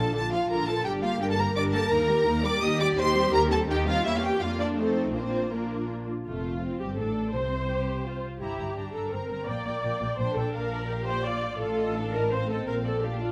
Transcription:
Already playing: A#1 F3 D4 F4 A4 A5
0.14 A#1 D3 D4 F4 A4 A5
0.31 F3 F4 F5
0.48 A#1 D3 D4 A#4 A#5
0.67 F3 F4 A4 A5
0.84 G1 G3 D4 G4 G5
1.02 A#3 F4 G4 F5
1.20 G1 G3 D4 G4 A#4 G5
1.30 A4 A5
1.38 A#3 G4 A#4 A#5
1.56 G1 G3 D4 D5 D6
1.73 A#3 G4 A4 A5
1.91 D#2 A#3 D#4 A#4 A#5
2.10 G3 G4
2.27 D#2 A#3 D#4
2.44 G3 G4 D5 D6
2.62 D#2 A#3 D#4 G4 D#5 D#6
2.80 G3 G4 D5 D6
2.98 D#2 D#3 D#4 C5 C6
3.15 G3 C4
3.33 D#2 D#3 D#4 A#4 A#5
3.51 G3 C4 A4 A5
3.70 D#2 D#3 D#4 G4 G5
3.87 G3 C4 F4 F5
4.05 E2 A#3 C#4 E4 G4 E5
4.16 F4 F5
4.22 G4 G5
4.40 F2 A#3 D4 F4 F5
4.60 D4 D5
4.77 A3 C4 D#4 A4 C5
5.14 A#1 A#3 C4 D4 F4 C5
5.51 A#3 D4 A#4
6.27 F1 F2 A3 F4
6.64 C4
6.80 G1 G2 G4
6.98 A1 A2 D4 A4
7.33 C2 C3 C4 C5
7.70 G4
8.06 F4
8.39 G1 G2 E4 G4 A#5
8.58 G1 G2 A#5
8.77 G1 G2 D4 A#5
8.93 G1 G2 A4 A#5
9.11 G1 G2 C4 A#4 A#5
9.29 G1 G2 A#5
9.47 A#1 A#2 A#3 D5 G5
9.65 A#1 A#2 G5
9.83 A#1 A#2 G5
10.00 A#1 A#2 G5
10.18 A#1 A#2 D4 C5 G5
10.36 A#1 A#2 A4 G5
10.53 A#1 A#2 A#4 F5
10.73 D5
10.89 G4 F5
11.06 C5 D5
11.24 F4 D5 F5
11.42 D5
11.60 A1 A2 A4 F5
11.78 D#5
11.96 D4 F5
12.14 A#4 D#5
12.32 C4 C5 F5
12.50 A4 D#5
12.67 A#1 A#2 A#4 F5
12.85 A4 D5
13.02 D4 G4 F5
13.21 F4 D5

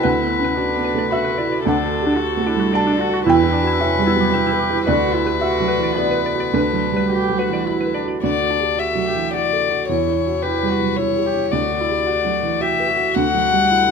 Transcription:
Already playing: E4 F#4 B4
0.03 D2 B4 F#5
0.21 B3
0.39 C#4
0.44 B4
0.56 D4 F#4
0.75 B3
0.84 B4
0.94 A3
0.98 D5
1.11 F#4 E5 B5
1.25 B4
1.29 B4
1.38 E4 D5
1.47 F#4
1.52 D5
1.65 D2 D4 A4 F#5
1.83 F#4
2.01 G4
2.06 D4
2.17 F#4
2.37 A3
2.46 D4 E4
2.55 G3
2.60 F#4
2.72 D4 F#4 D5 A5
2.87 D4
2.91 D5
3.00 F#4
3.09 F#4
3.14 F#4
3.26 E2 E4 B4 G5
3.43 E4
3.53 D4
3.62 F#4
3.67 E4
3.79 C#4 E4 E5
3.98 G3
4.05 B3 E4
4.16 F#3
4.20 G4
4.33 E4 G4 E5
4.47 E4
4.53 B4
4.60 G4
4.70 E4 G4
4.86 D2 F#4 B4 D5
5.07 F#4
5.14 E4
5.24 G4 B4
5.41 F#4 E5
5.60 F#3
5.68 B4
5.78 E3
5.83 D5
5.97 B3 F#4 D5 B5
6.11 B4
6.16 B4
6.26 D5
6.35 F#4
6.40 D5
6.53 D2 D4 B4
6.73 F#3
6.92 G3
6.97 B4
7.10 F#4 G4
7.30 F#3
7.38 F#4 B4
7.50 E3 D5
7.67 E4 F#4 B5
7.81 B4
7.87 B4
7.94 D4 D5
8.05 F#4 D5
8.23 D2 F#4 D5
8.41 F#4
8.50 D4
8.60 G4
8.78 F#4 E5
8.95 F#3
9.06 G4
9.15 E3
9.33 F#4 D5
9.53 A4
9.71 F#4
9.88 E2 E4 C#5
10.07 E4
10.26 F#4
10.42 E4 G4 B4
10.63 G3
10.70 F#4
10.80 F#3
10.96 E4 C#5
11.17 G4
11.26 G4
11.34 E4
11.51 D2 F#4 D5
11.72 F#4
11.80 E4
11.89 G4
12.07 F#4
12.25 F#3
12.43 E3
12.60 F#4 G4 E5
12.80 B4
12.89 F#4
12.97 F#4
13.15 D2 F#5
13.34 F#3
13.52 G3
13.71 E4 F#4

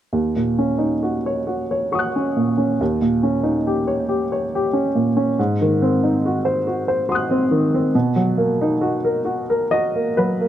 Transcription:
0.13 D#2
0.36 A#2
0.58 C#4
0.78 D#4
1.03 F#4
1.26 C#5
1.47 F#4
1.71 C#5
1.92 F#4 C#6 D#6
1.99 F#6
2.16 C#4
2.37 A#2
2.58 C#4
2.81 D#2
3.02 A#2
3.23 C#4
3.43 D#4
3.67 G4
3.87 C#5
4.09 G4
4.32 C#5
4.55 G4
4.73 C#4
4.95 A#2
5.17 C#4
5.39 G#2
5.61 D#3
5.82 C4
6.04 D#4
6.26 F#4
6.45 C5
6.67 F#4
6.88 C5
7.09 F#4 C6 D#6
7.15 F#6
7.31 C4
7.51 D#3
7.74 C4
7.95 B2
8.16 F#3
8.38 A#3
8.61 D#4
8.81 F#4
9.05 A#4
9.25 F#4
9.50 A#4
9.71 F#4 D#5
9.95 A#3
10.17 F#3 B4
10.41 A#3

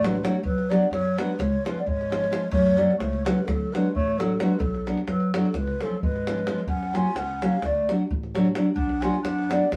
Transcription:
Already playing: A1
0.03 F#3 G#3 A3 D4 F#4 B4, davul high
0.15 davul high
0.23 F#3 A3 D4 F#4 C#5, davul high
0.43 B1 F#3 B4, davul low
0.58 davul high
0.70 F#3 B3 D4 F#4 D5, davul high
0.82 davul high
0.91 F#2 F#3 C#5, davul high
1.05 davul high
1.18 F#3 G#3 B3 D4 F#4 B4, davul high
1.38 C#2 G#3 C#5, davul high, davul low
1.65 F3 G#3 C#4 F4 B4, davul high
1.79 B3 D5
1.86 G#1 G#3 C#5, davul low
2.01 davul high
2.10 F3 G#3 C#4 F4, davul high
2.24 davul high
2.30 F3 G#3 C#4 F4, davul high
2.51 F#2 A3 C#5, davul low
2.67 davul high
2.77 F#3 A3 B3 C#4 F#4 D5
2.91 davul high
2.97 C#2 A3 C#5, davul high
3.13 davul high
3.24 F#3 G#3 A3 C#4 F#4 B4, davul high
3.45 D2 F#3 A4, davul high, davul low
3.73 F#3 G#3 A3 D4 F#4 B4, davul high
3.95 A1 A3 C#5, davul low
4.08 davul high
4.19 F#3 A3 D4 F#4 A4, davul high
4.39 F#3 G#3 A3 D4 F#4 B4, davul high
4.59 B1 F#3 A4, davul low
4.75 davul high
4.86 F#3 B3 D4 F#4, davul high
4.97 davul high
5.07 F#2 F#3 B4, davul high
5.20 davul high
5.34 F#3 B3 D4 F#4 A4, davul high
5.45 davul high
5.54 C#2 G#3 B4, davul high, davul low
5.67 davul high
5.81 F3 F#3 G#3 C#4 A4, davul high
5.85 F4
6.02 G#1 G#3 B4, davul low
6.16 davul high
6.27 F3 G#3 C#4 F4, davul high
6.38 davul high
6.47 F3 G#3 C#4 F4, davul high
6.58 davul high
6.67 F#2 C#4 F#5, davul low
6.83 davul high
6.93 F#3 A3 C#4 F4 F#4 G#5, davul high
7.06 davul high
7.15 C#2 C#4 F#5, davul high
7.29 davul high
7.42 F#3 A3 C#4 F#4 F5, davul high
7.62 D2 A3 D5, davul high, davul low
7.89 F#3 A3 D4 F#4, davul high
8.11 A1, davul low
8.23 davul high
8.35 F#3 A3 D4 F#4, davul high
8.45 davul high
8.55 F#3 A3 D4 F#4, davul high
8.75 B1 D4 F#5, davul low
8.89 davul high
9.02 F#3 B3 D4 F4 F#4 G#5, davul high
9.14 davul high
9.22 F#2 D4 F#5, davul high
9.39 davul high
9.49 F#3 B3 D4 F#4 D5, davul high
9.71 C#2 G#3, davul high, davul low

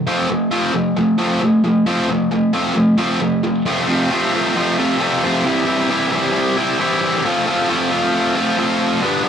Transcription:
0.07 F3 A3 C4
0.29 F3 A3
0.51 F3 A3 C4
0.73 F3 A3
0.97 F3 A3
1.18 F3 A3 C4
1.41 F3 A3
1.64 F3 A3
1.86 F3 A3 C4
2.10 F3 A3
2.31 F3 A3
2.53 F3 A3 C4
2.75 F3 A3
2.98 F3 A3 C4
3.20 F3 A3
3.43 F3 A3
3.65 F2 C3 F3 A3 C4 F4
3.88 F2 C3 F3 A3 C4 F4
4.11 F2 C3 F3 A3 C4 F4
4.34 F2 C3 F3 A3 C4 F4
4.56 F2 C3 F3 A3 C4 F4
4.78 F2 C3 F3 A3 C4 F4
5.00 F2 C3 F3 A3 C4 F4
5.23 F2 C3 F3 A3 C4 F4
5.44 C3 E3 G3 C4 E4
5.67 G3 C4 E4
5.89 C3 E3 G3 C4 E4
6.13 G3 C4 E4
6.57 G3 C4 E4
6.79 E3 G3 C4 E4
7.25 F3 A3 C4 F4
7.46 A3 C4 F4
7.68 F3 A3 C4 F4
7.91 A3 C4 F4
8.36 A3 C4 F4
8.58 F3 A3 C4 F4
9.01 G2 D3 G3 B3 D4
9.23 G3 B3 D4

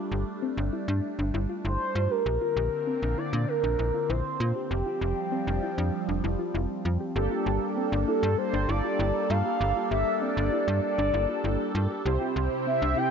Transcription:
Already playing: G3 A3 D4
0.12 G1 G4
0.42 C4
0.57 G1 D4
0.73 E4
0.88 G2 D4
1.19 G1 D4
1.34 G1 E4
1.49 F4
1.65 G1 E4 C5
1.95 G2 F4
2.11 G4 A#4
2.26 A#1 D3 A#3 C4 G4
2.41 F4
2.57 A#1 G4
2.87 C4
3.02 A#1 D4
3.18 E4 D5
3.33 A#2 D4
3.48 A#4
3.64 A#1 D4
3.79 A#1 E4
3.94 F4
4.10 A#1 E4 C5
4.40 A#2 F4
4.55 G4
4.71 F1 F3 G3 G4
4.86 F4
5.01 F1 G4
5.32 C4
5.47 F1 D4
5.63 E4
5.78 F2 D4
6.09 F1 D4
6.24 F1 E4
6.39 F4
6.54 F1 E4
6.85 F2 F4
7.00 G4
7.16 G1 G3 A#3 D4 G4 A4
7.31 F4
7.46 G1 G4
7.77 C4
7.92 G1 D4
8.08 E4 A4
8.23 G2 D4
8.38 C5
8.54 G1 D4
8.69 G1 E4 D5
8.84 F4
8.99 G1 E4
9.30 G2 F4 F5
9.45 G4
9.61 G1 G4
9.76 F4
9.91 G1 G4 E5
10.22 C4 D5
10.37 G1 D4
10.52 E4
10.68 G2 D4
10.83 D5
10.98 G1 D4
11.14 G1 E4
11.29 F4
11.44 G1 E4
11.75 G2 F4
11.90 G4
12.05 C2 C3 C4 E4 G4 C5
12.21 F4
12.36 C2 G4
12.67 C4 E5
12.82 C2 D4
12.97 E4 G5

